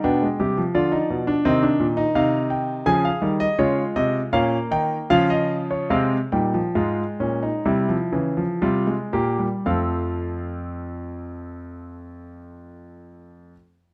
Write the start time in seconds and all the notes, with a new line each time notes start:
0.04 B2 B3 D4 G5
0.22 G#3
0.40 C3 G3 G4
0.58 F3
0.75 D3 F4 D5
0.92 D#4
1.10 B2
1.27 D4
1.45 C3 D#3 C4 D#5
1.63 D4
1.80 A#2
1.97 D#4
2.15 C3 D#4 F5
2.50 G5
2.86 C#3 F3 G#4 G#5
3.05 F5
3.22 D#3 G3
3.40 D#5
3.59 C#3 G#3 F4 C#5
3.96 C3 D#5
4.33 A#2 A#3 C#4 F5
4.71 D#3 D#4 G5
5.10 C#3 F3 F4 F5
5.30 D#5
5.71 C#5
5.90 C3 G#3 C4 F5
6.32 A#2 G3 D#4 G5
6.54 F3
6.75 G#2 G#3 F4
7.20 A#2 C#4
7.43 D#4
7.65 C3 G3 E4
7.89 F3
8.12 C#3 E3
8.37 F3
8.62 C3 G3 F4
8.87 G#3
9.13 A#2 A#3 G4
9.39 G3
9.66 F2 F3 A3 C4 A4 F5